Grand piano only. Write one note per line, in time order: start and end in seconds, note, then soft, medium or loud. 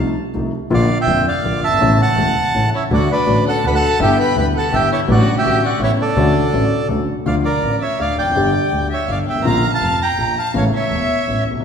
0.00 0.14 C2 medium
0.00 0.14 C3 soft
0.00 0.14 F3 soft
0.00 0.14 A3 soft
0.00 0.14 D#4 medium
0.34 0.50 C2 soft
0.34 0.50 C3 soft
0.34 0.50 F3 soft
0.34 0.50 A3 soft
0.34 0.50 D#4 soft
0.70 0.86 A#1 medium
0.70 0.86 A#2 medium
0.70 0.86 D3 medium
0.70 0.86 F3 medium
0.70 0.87 A#3 medium
0.70 0.87 F4 medium
1.07 1.23 F1 soft
1.07 1.23 F2 soft
1.07 1.22 D3 soft
1.07 1.23 F3 soft
1.07 1.23 A#3 soft
1.07 1.23 F4 medium
1.44 1.60 A#1 medium
1.44 1.60 A#2 medium
1.44 1.59 D3 soft
1.44 1.60 F3 soft
1.44 1.60 A#3 soft
1.44 1.60 F4 medium
1.68 1.72 F#1 medium
1.68 1.76 G1 medium
1.76 1.81 G#1 medium
1.81 1.96 A1 medium
1.81 1.96 A2 medium
1.81 1.96 C#3 medium
1.81 1.96 E3 medium
1.81 1.96 A3 medium
1.81 1.96 E4 medium
2.18 2.33 E1 soft
2.18 2.33 E2 soft
2.18 2.33 C#3 soft
2.18 2.33 E3 soft
2.18 2.33 A3 soft
2.18 2.33 E4 soft
2.55 2.70 A1 soft
2.55 2.70 A2 soft
2.55 2.70 C#3 soft
2.55 2.70 E3 soft
2.55 2.70 A3 soft
2.55 2.70 E4 soft
2.91 3.06 D2 medium
2.91 3.06 D3 medium
2.91 3.06 F#3 medium
2.91 3.06 A3 medium
2.91 3.06 F#4 medium
3.27 3.42 A1 medium
3.27 3.42 A2 medium
3.27 3.42 D3 soft
3.27 3.42 F#3 soft
3.27 3.42 A3 soft
3.27 3.42 F#4 soft
3.64 3.79 D2 soft
3.64 3.79 D3 soft
3.64 3.79 F#3 soft
3.64 3.79 A3 soft
3.64 3.79 F#4 medium
3.99 4.15 G1 medium
3.99 4.15 G2 medium
3.99 4.15 D3 medium
3.99 4.15 G3 medium
3.99 4.15 B3 medium
3.99 4.15 E4 medium
4.36 4.51 D2 soft
4.36 4.51 D3 medium
4.36 4.51 G3 soft
4.36 4.51 B3 soft
4.36 4.51 E4 soft
4.72 4.88 G1 soft
4.72 4.88 G2 soft
4.72 4.87 D3 soft
4.72 4.88 G3 soft
4.72 4.88 B3 soft
4.72 4.88 E4 soft
5.08 5.24 A1 medium
5.08 5.24 A2 medium
5.08 5.23 D3 medium
5.08 5.23 F#3 medium
5.08 5.24 A3 medium
5.08 5.24 F#4 medium
5.44 5.60 A1 medium
5.44 5.60 A2 soft
5.44 5.60 D3 soft
5.44 5.60 F#3 soft
5.44 5.60 A3 soft
5.44 5.60 F#4 soft
5.79 5.96 A1 medium
5.79 5.96 A2 medium
5.79 5.95 C#3 soft
5.79 5.96 A3 soft
5.79 5.96 B3 soft
5.79 5.96 E4 medium
6.17 6.32 D2 medium
6.17 6.32 D3 medium
6.17 6.32 A3 medium
6.17 6.32 C#4 medium
6.17 6.33 F#4 medium
6.53 6.69 A1 medium
6.53 6.69 A2 medium
6.53 6.69 D3 soft
6.53 6.69 A3 soft
6.53 6.69 C#4 soft
6.53 6.69 F#4 soft
6.88 7.05 D2 medium
6.88 7.05 D3 soft
6.88 7.05 A3 soft
6.88 7.05 C#4 soft
6.88 7.05 F#4 soft
7.26 7.42 D2 medium
7.26 7.42 D3 medium
7.26 7.42 F3 medium
7.26 7.42 A3 soft
7.26 7.42 F4 medium
7.63 7.79 A1 soft
7.63 7.79 A2 soft
8.00 8.15 D2 soft
8.00 8.15 D3 soft
8.23 8.27 E2 soft
8.27 8.32 F2 medium
8.32 8.37 F#2 medium
8.32 8.51 D3 medium
8.36 8.52 G1 medium
8.36 8.52 G2 medium
8.36 8.52 G3 medium
8.36 8.52 B3 medium
8.36 8.52 G4 medium
8.72 8.88 D2 soft
8.72 8.88 D3 soft
9.09 9.24 G1 soft
9.09 9.25 G2 soft
9.32 9.37 G1 soft
9.36 9.41 G#1 soft
9.41 9.46 A1 medium
9.41 9.61 A#1 medium
9.41 9.61 D3 medium
9.41 9.61 F3 medium
9.45 9.61 A#2 medium
9.45 9.61 A#3 medium
9.45 9.61 F4 medium
9.83 9.98 F1 soft
9.83 9.98 F2 soft
10.18 10.34 A#1 soft
10.18 10.34 A#2 soft
10.54 10.70 A1 medium
10.54 10.70 A2 medium
10.54 10.70 C#3 medium
10.54 10.70 E3 medium
10.54 10.70 A3 medium
10.54 10.70 E4 medium
10.91 11.07 E1 soft
10.91 11.07 E2 soft
11.28 11.43 A1 soft
11.28 11.44 A2 soft
11.51 11.56 B1 soft
11.55 11.60 C2 soft
11.61 11.65 C#2 medium